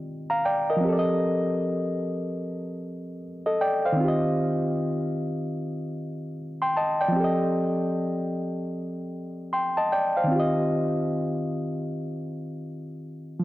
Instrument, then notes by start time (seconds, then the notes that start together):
reed electric piano
0.30 F5 A#5
0.45 D5 G5
0.70 A#4 D#5
0.77 F3 C4
0.85 G4 A4
0.92 D5
0.99 D#5
3.46 A4 D#5
3.61 D5 G5
3.85 C5 F5
3.92 D#3
3.96 C4 F4
4.04 G4 D#5
6.62 G5 C6
6.77 D#5 A5
7.01 D5 G5
7.08 F3 C4
7.16 G4
7.20 A4 D#5
9.53 G5 C6
9.77 D#5 A5
9.92 D5 G5
10.17 C5 F5
10.24 D#3 C4
10.32 F4
10.36 G4 D#5
13.40 F3